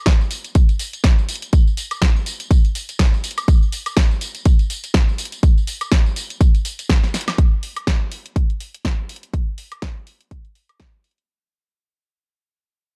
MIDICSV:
0, 0, Header, 1, 2, 480
1, 0, Start_track
1, 0, Tempo, 487805
1, 1505, Time_signature, 4, 2, 24, 8
1, 12744, End_track
2, 0, Start_track
2, 0, Title_t, "Drums"
2, 59, Note_on_c, 9, 38, 121
2, 60, Note_on_c, 9, 42, 36
2, 64, Note_on_c, 9, 36, 104
2, 66, Note_on_c, 9, 54, 47
2, 157, Note_off_c, 9, 38, 0
2, 159, Note_off_c, 9, 42, 0
2, 162, Note_off_c, 9, 36, 0
2, 164, Note_off_c, 9, 54, 0
2, 203, Note_on_c, 9, 54, 22
2, 301, Note_off_c, 9, 54, 0
2, 302, Note_on_c, 9, 46, 107
2, 307, Note_on_c, 9, 54, 75
2, 400, Note_off_c, 9, 46, 0
2, 406, Note_off_c, 9, 54, 0
2, 438, Note_on_c, 9, 42, 50
2, 443, Note_on_c, 9, 54, 35
2, 536, Note_off_c, 9, 42, 0
2, 541, Note_on_c, 9, 42, 69
2, 542, Note_off_c, 9, 54, 0
2, 544, Note_on_c, 9, 36, 116
2, 547, Note_on_c, 9, 54, 47
2, 640, Note_off_c, 9, 42, 0
2, 642, Note_off_c, 9, 36, 0
2, 646, Note_off_c, 9, 54, 0
2, 679, Note_on_c, 9, 42, 35
2, 685, Note_on_c, 9, 54, 22
2, 778, Note_off_c, 9, 42, 0
2, 782, Note_on_c, 9, 46, 108
2, 783, Note_off_c, 9, 54, 0
2, 787, Note_on_c, 9, 54, 80
2, 880, Note_off_c, 9, 46, 0
2, 886, Note_off_c, 9, 54, 0
2, 919, Note_on_c, 9, 42, 51
2, 925, Note_on_c, 9, 54, 34
2, 1017, Note_off_c, 9, 42, 0
2, 1021, Note_on_c, 9, 38, 112
2, 1023, Note_off_c, 9, 54, 0
2, 1023, Note_on_c, 9, 42, 65
2, 1025, Note_on_c, 9, 36, 113
2, 1028, Note_on_c, 9, 54, 45
2, 1119, Note_off_c, 9, 38, 0
2, 1121, Note_off_c, 9, 42, 0
2, 1123, Note_off_c, 9, 36, 0
2, 1127, Note_off_c, 9, 54, 0
2, 1167, Note_on_c, 9, 54, 23
2, 1265, Note_off_c, 9, 54, 0
2, 1265, Note_on_c, 9, 46, 109
2, 1271, Note_on_c, 9, 54, 85
2, 1333, Note_on_c, 9, 42, 63
2, 1364, Note_off_c, 9, 46, 0
2, 1369, Note_off_c, 9, 54, 0
2, 1400, Note_off_c, 9, 42, 0
2, 1400, Note_on_c, 9, 42, 53
2, 1406, Note_on_c, 9, 54, 36
2, 1499, Note_off_c, 9, 42, 0
2, 1504, Note_off_c, 9, 54, 0
2, 1504, Note_on_c, 9, 42, 68
2, 1505, Note_on_c, 9, 36, 117
2, 1509, Note_on_c, 9, 54, 49
2, 1602, Note_off_c, 9, 42, 0
2, 1604, Note_off_c, 9, 36, 0
2, 1608, Note_off_c, 9, 54, 0
2, 1646, Note_on_c, 9, 54, 24
2, 1745, Note_off_c, 9, 54, 0
2, 1745, Note_on_c, 9, 46, 103
2, 1750, Note_on_c, 9, 54, 81
2, 1843, Note_off_c, 9, 46, 0
2, 1849, Note_off_c, 9, 54, 0
2, 1880, Note_on_c, 9, 42, 52
2, 1880, Note_on_c, 9, 76, 66
2, 1886, Note_on_c, 9, 54, 34
2, 1979, Note_off_c, 9, 42, 0
2, 1979, Note_off_c, 9, 76, 0
2, 1984, Note_on_c, 9, 38, 118
2, 1985, Note_off_c, 9, 54, 0
2, 1985, Note_on_c, 9, 36, 103
2, 1986, Note_on_c, 9, 42, 36
2, 1992, Note_on_c, 9, 54, 50
2, 2083, Note_off_c, 9, 38, 0
2, 2084, Note_off_c, 9, 36, 0
2, 2084, Note_off_c, 9, 42, 0
2, 2090, Note_off_c, 9, 54, 0
2, 2128, Note_on_c, 9, 54, 23
2, 2226, Note_on_c, 9, 46, 94
2, 2227, Note_off_c, 9, 54, 0
2, 2232, Note_on_c, 9, 54, 82
2, 2324, Note_off_c, 9, 46, 0
2, 2330, Note_off_c, 9, 54, 0
2, 2361, Note_on_c, 9, 42, 57
2, 2367, Note_on_c, 9, 54, 35
2, 2460, Note_off_c, 9, 42, 0
2, 2465, Note_off_c, 9, 54, 0
2, 2466, Note_on_c, 9, 36, 116
2, 2469, Note_on_c, 9, 42, 66
2, 2474, Note_on_c, 9, 54, 49
2, 2565, Note_off_c, 9, 36, 0
2, 2567, Note_off_c, 9, 42, 0
2, 2573, Note_off_c, 9, 54, 0
2, 2605, Note_on_c, 9, 42, 37
2, 2611, Note_on_c, 9, 54, 24
2, 2703, Note_off_c, 9, 42, 0
2, 2708, Note_on_c, 9, 46, 106
2, 2709, Note_off_c, 9, 54, 0
2, 2713, Note_on_c, 9, 54, 82
2, 2806, Note_off_c, 9, 46, 0
2, 2812, Note_off_c, 9, 54, 0
2, 2843, Note_on_c, 9, 42, 55
2, 2849, Note_on_c, 9, 54, 36
2, 2942, Note_off_c, 9, 42, 0
2, 2945, Note_on_c, 9, 38, 117
2, 2946, Note_on_c, 9, 36, 98
2, 2946, Note_on_c, 9, 42, 64
2, 2947, Note_off_c, 9, 54, 0
2, 2952, Note_on_c, 9, 54, 47
2, 3043, Note_off_c, 9, 38, 0
2, 3044, Note_off_c, 9, 36, 0
2, 3045, Note_off_c, 9, 42, 0
2, 3050, Note_off_c, 9, 54, 0
2, 3088, Note_on_c, 9, 54, 23
2, 3186, Note_off_c, 9, 54, 0
2, 3186, Note_on_c, 9, 46, 105
2, 3192, Note_on_c, 9, 54, 85
2, 3255, Note_on_c, 9, 42, 68
2, 3284, Note_off_c, 9, 46, 0
2, 3290, Note_off_c, 9, 54, 0
2, 3323, Note_off_c, 9, 42, 0
2, 3323, Note_on_c, 9, 42, 56
2, 3323, Note_on_c, 9, 76, 87
2, 3328, Note_on_c, 9, 54, 35
2, 3421, Note_off_c, 9, 42, 0
2, 3421, Note_off_c, 9, 76, 0
2, 3425, Note_on_c, 9, 36, 124
2, 3427, Note_off_c, 9, 54, 0
2, 3427, Note_on_c, 9, 42, 69
2, 3432, Note_on_c, 9, 54, 51
2, 3524, Note_off_c, 9, 36, 0
2, 3525, Note_off_c, 9, 42, 0
2, 3531, Note_off_c, 9, 54, 0
2, 3567, Note_on_c, 9, 54, 25
2, 3665, Note_off_c, 9, 54, 0
2, 3665, Note_on_c, 9, 46, 100
2, 3670, Note_on_c, 9, 54, 82
2, 3763, Note_off_c, 9, 46, 0
2, 3769, Note_off_c, 9, 54, 0
2, 3800, Note_on_c, 9, 42, 55
2, 3800, Note_on_c, 9, 76, 71
2, 3805, Note_on_c, 9, 54, 35
2, 3898, Note_off_c, 9, 42, 0
2, 3898, Note_off_c, 9, 76, 0
2, 3903, Note_on_c, 9, 38, 123
2, 3904, Note_off_c, 9, 54, 0
2, 3904, Note_on_c, 9, 42, 40
2, 3905, Note_on_c, 9, 36, 104
2, 3910, Note_on_c, 9, 54, 51
2, 4001, Note_off_c, 9, 38, 0
2, 4003, Note_off_c, 9, 36, 0
2, 4003, Note_off_c, 9, 42, 0
2, 4009, Note_off_c, 9, 54, 0
2, 4046, Note_on_c, 9, 54, 24
2, 4144, Note_off_c, 9, 54, 0
2, 4144, Note_on_c, 9, 46, 101
2, 4150, Note_on_c, 9, 54, 81
2, 4243, Note_off_c, 9, 46, 0
2, 4249, Note_off_c, 9, 54, 0
2, 4277, Note_on_c, 9, 42, 58
2, 4283, Note_on_c, 9, 54, 38
2, 4375, Note_off_c, 9, 42, 0
2, 4381, Note_off_c, 9, 54, 0
2, 4383, Note_on_c, 9, 42, 71
2, 4385, Note_on_c, 9, 36, 118
2, 4389, Note_on_c, 9, 54, 48
2, 4481, Note_off_c, 9, 42, 0
2, 4483, Note_off_c, 9, 36, 0
2, 4487, Note_off_c, 9, 54, 0
2, 4519, Note_on_c, 9, 42, 39
2, 4525, Note_on_c, 9, 54, 24
2, 4618, Note_off_c, 9, 42, 0
2, 4623, Note_off_c, 9, 54, 0
2, 4625, Note_on_c, 9, 46, 101
2, 4630, Note_on_c, 9, 54, 87
2, 4723, Note_off_c, 9, 46, 0
2, 4729, Note_off_c, 9, 54, 0
2, 4760, Note_on_c, 9, 42, 57
2, 4765, Note_on_c, 9, 54, 38
2, 4858, Note_off_c, 9, 42, 0
2, 4862, Note_on_c, 9, 38, 114
2, 4863, Note_on_c, 9, 42, 67
2, 4864, Note_off_c, 9, 54, 0
2, 4864, Note_on_c, 9, 36, 103
2, 4869, Note_on_c, 9, 54, 48
2, 4960, Note_off_c, 9, 38, 0
2, 4962, Note_off_c, 9, 36, 0
2, 4962, Note_off_c, 9, 42, 0
2, 4967, Note_off_c, 9, 54, 0
2, 5005, Note_on_c, 9, 54, 22
2, 5101, Note_on_c, 9, 46, 104
2, 5104, Note_off_c, 9, 54, 0
2, 5107, Note_on_c, 9, 54, 89
2, 5170, Note_on_c, 9, 42, 68
2, 5199, Note_off_c, 9, 46, 0
2, 5205, Note_off_c, 9, 54, 0
2, 5238, Note_off_c, 9, 42, 0
2, 5238, Note_on_c, 9, 42, 56
2, 5244, Note_on_c, 9, 54, 34
2, 5336, Note_off_c, 9, 42, 0
2, 5342, Note_off_c, 9, 54, 0
2, 5344, Note_on_c, 9, 36, 122
2, 5344, Note_on_c, 9, 42, 72
2, 5349, Note_on_c, 9, 54, 50
2, 5442, Note_off_c, 9, 36, 0
2, 5442, Note_off_c, 9, 42, 0
2, 5448, Note_off_c, 9, 54, 0
2, 5486, Note_on_c, 9, 54, 25
2, 5583, Note_on_c, 9, 46, 105
2, 5585, Note_off_c, 9, 54, 0
2, 5589, Note_on_c, 9, 54, 82
2, 5681, Note_off_c, 9, 46, 0
2, 5687, Note_off_c, 9, 54, 0
2, 5718, Note_on_c, 9, 42, 56
2, 5718, Note_on_c, 9, 76, 67
2, 5724, Note_on_c, 9, 54, 34
2, 5816, Note_off_c, 9, 42, 0
2, 5816, Note_off_c, 9, 76, 0
2, 5821, Note_on_c, 9, 38, 124
2, 5822, Note_off_c, 9, 54, 0
2, 5823, Note_on_c, 9, 42, 39
2, 5824, Note_on_c, 9, 36, 101
2, 5828, Note_on_c, 9, 54, 49
2, 5919, Note_off_c, 9, 38, 0
2, 5921, Note_off_c, 9, 42, 0
2, 5922, Note_off_c, 9, 36, 0
2, 5927, Note_off_c, 9, 54, 0
2, 5965, Note_on_c, 9, 54, 23
2, 6064, Note_off_c, 9, 54, 0
2, 6064, Note_on_c, 9, 46, 100
2, 6070, Note_on_c, 9, 54, 79
2, 6162, Note_off_c, 9, 46, 0
2, 6168, Note_off_c, 9, 54, 0
2, 6202, Note_on_c, 9, 42, 57
2, 6208, Note_on_c, 9, 54, 35
2, 6301, Note_off_c, 9, 42, 0
2, 6304, Note_on_c, 9, 36, 125
2, 6305, Note_on_c, 9, 42, 72
2, 6306, Note_off_c, 9, 54, 0
2, 6311, Note_on_c, 9, 54, 48
2, 6402, Note_off_c, 9, 36, 0
2, 6403, Note_off_c, 9, 42, 0
2, 6409, Note_off_c, 9, 54, 0
2, 6442, Note_on_c, 9, 42, 39
2, 6448, Note_on_c, 9, 54, 24
2, 6540, Note_off_c, 9, 42, 0
2, 6543, Note_on_c, 9, 46, 110
2, 6546, Note_off_c, 9, 54, 0
2, 6549, Note_on_c, 9, 54, 86
2, 6642, Note_off_c, 9, 46, 0
2, 6648, Note_off_c, 9, 54, 0
2, 6681, Note_on_c, 9, 42, 58
2, 6687, Note_on_c, 9, 54, 36
2, 6780, Note_off_c, 9, 42, 0
2, 6785, Note_off_c, 9, 54, 0
2, 6785, Note_on_c, 9, 36, 105
2, 6785, Note_on_c, 9, 38, 120
2, 6787, Note_on_c, 9, 42, 69
2, 6792, Note_on_c, 9, 54, 47
2, 6883, Note_off_c, 9, 36, 0
2, 6883, Note_off_c, 9, 38, 0
2, 6885, Note_off_c, 9, 42, 0
2, 6891, Note_off_c, 9, 54, 0
2, 6923, Note_on_c, 9, 38, 36
2, 6931, Note_on_c, 9, 54, 22
2, 7022, Note_off_c, 9, 38, 0
2, 7026, Note_on_c, 9, 38, 61
2, 7026, Note_on_c, 9, 46, 108
2, 7029, Note_off_c, 9, 54, 0
2, 7032, Note_on_c, 9, 54, 83
2, 7094, Note_on_c, 9, 42, 72
2, 7125, Note_off_c, 9, 38, 0
2, 7125, Note_off_c, 9, 46, 0
2, 7130, Note_off_c, 9, 54, 0
2, 7161, Note_off_c, 9, 42, 0
2, 7161, Note_on_c, 9, 38, 75
2, 7161, Note_on_c, 9, 42, 56
2, 7161, Note_on_c, 9, 76, 85
2, 7167, Note_on_c, 9, 54, 35
2, 7260, Note_off_c, 9, 38, 0
2, 7260, Note_off_c, 9, 42, 0
2, 7260, Note_off_c, 9, 76, 0
2, 7265, Note_off_c, 9, 54, 0
2, 7266, Note_on_c, 9, 36, 116
2, 7266, Note_on_c, 9, 42, 66
2, 7364, Note_off_c, 9, 36, 0
2, 7364, Note_off_c, 9, 42, 0
2, 7507, Note_on_c, 9, 46, 96
2, 7605, Note_off_c, 9, 46, 0
2, 7640, Note_on_c, 9, 42, 53
2, 7640, Note_on_c, 9, 76, 62
2, 7739, Note_off_c, 9, 42, 0
2, 7739, Note_off_c, 9, 76, 0
2, 7746, Note_on_c, 9, 36, 101
2, 7746, Note_on_c, 9, 38, 126
2, 7747, Note_on_c, 9, 42, 39
2, 7844, Note_off_c, 9, 36, 0
2, 7844, Note_off_c, 9, 38, 0
2, 7846, Note_off_c, 9, 42, 0
2, 7986, Note_on_c, 9, 46, 103
2, 8084, Note_off_c, 9, 46, 0
2, 8125, Note_on_c, 9, 42, 54
2, 8223, Note_off_c, 9, 42, 0
2, 8226, Note_on_c, 9, 36, 120
2, 8228, Note_on_c, 9, 42, 67
2, 8324, Note_off_c, 9, 36, 0
2, 8327, Note_off_c, 9, 42, 0
2, 8364, Note_on_c, 9, 42, 35
2, 8462, Note_off_c, 9, 42, 0
2, 8467, Note_on_c, 9, 46, 100
2, 8565, Note_off_c, 9, 46, 0
2, 8605, Note_on_c, 9, 42, 56
2, 8703, Note_off_c, 9, 42, 0
2, 8706, Note_on_c, 9, 36, 100
2, 8707, Note_on_c, 9, 38, 115
2, 8708, Note_on_c, 9, 42, 64
2, 8804, Note_off_c, 9, 36, 0
2, 8805, Note_off_c, 9, 38, 0
2, 8807, Note_off_c, 9, 42, 0
2, 8948, Note_on_c, 9, 46, 102
2, 9016, Note_on_c, 9, 42, 64
2, 9046, Note_off_c, 9, 46, 0
2, 9084, Note_off_c, 9, 42, 0
2, 9084, Note_on_c, 9, 42, 52
2, 9182, Note_off_c, 9, 42, 0
2, 9186, Note_on_c, 9, 36, 127
2, 9187, Note_on_c, 9, 42, 66
2, 9284, Note_off_c, 9, 36, 0
2, 9285, Note_off_c, 9, 42, 0
2, 9425, Note_on_c, 9, 46, 98
2, 9524, Note_off_c, 9, 46, 0
2, 9561, Note_on_c, 9, 42, 48
2, 9561, Note_on_c, 9, 76, 60
2, 9659, Note_off_c, 9, 42, 0
2, 9659, Note_off_c, 9, 76, 0
2, 9664, Note_on_c, 9, 38, 118
2, 9666, Note_on_c, 9, 36, 100
2, 9666, Note_on_c, 9, 42, 37
2, 9763, Note_off_c, 9, 38, 0
2, 9764, Note_off_c, 9, 42, 0
2, 9765, Note_off_c, 9, 36, 0
2, 9907, Note_on_c, 9, 46, 103
2, 10006, Note_off_c, 9, 46, 0
2, 10043, Note_on_c, 9, 42, 51
2, 10141, Note_off_c, 9, 42, 0
2, 10146, Note_on_c, 9, 36, 113
2, 10146, Note_on_c, 9, 42, 68
2, 10245, Note_off_c, 9, 36, 0
2, 10245, Note_off_c, 9, 42, 0
2, 10280, Note_on_c, 9, 42, 35
2, 10378, Note_off_c, 9, 42, 0
2, 10385, Note_on_c, 9, 46, 98
2, 10483, Note_off_c, 9, 46, 0
2, 10522, Note_on_c, 9, 42, 49
2, 10522, Note_on_c, 9, 76, 72
2, 10621, Note_off_c, 9, 42, 0
2, 10621, Note_off_c, 9, 76, 0
2, 10623, Note_on_c, 9, 38, 113
2, 10625, Note_on_c, 9, 42, 63
2, 10626, Note_on_c, 9, 36, 104
2, 10722, Note_off_c, 9, 38, 0
2, 10724, Note_off_c, 9, 36, 0
2, 10724, Note_off_c, 9, 42, 0
2, 10865, Note_on_c, 9, 46, 101
2, 10934, Note_on_c, 9, 42, 60
2, 10963, Note_off_c, 9, 46, 0
2, 11002, Note_off_c, 9, 42, 0
2, 11002, Note_on_c, 9, 42, 51
2, 11100, Note_off_c, 9, 42, 0
2, 12744, End_track
0, 0, End_of_file